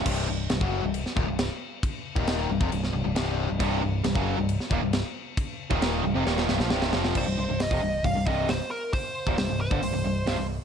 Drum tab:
CC |x---x---x---x---|x---x---x---x---|x---x---x---x---|x---x-----------|
HH |----------------|----------------|----------------|----------------|
SD |----o----o--o---|----o----o--o---|----o----o--o---|----o---oooooooo|
BD |o----o----o-----|o--o---o--------|o----o----o-----|o--o------------|

CC |x---------------|----------------|
HH |----o---o---o---|o---o---o---o---|
SD |----o-------o---|----o-------o---|
BD |o----o--o-o-----|o--o---o--------|